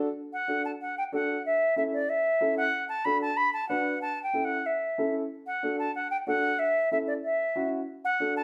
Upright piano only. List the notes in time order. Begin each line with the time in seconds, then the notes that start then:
0.48 D4 F#4 A4
1.12 D4 F#4 A4
1.76 C#4 E4 A4
2.41 C#4 E4 A4
3.05 D4 F#4 A4
3.69 D4 F#4 B4
4.33 C#4 E4 A4
4.98 C#4 E4 A4
5.63 D4 F#4 A4
6.27 D4 F#4 A4
6.92 C#4 E4 A4
7.56 C#4 E4 F#4
8.20 D4 F#4 A4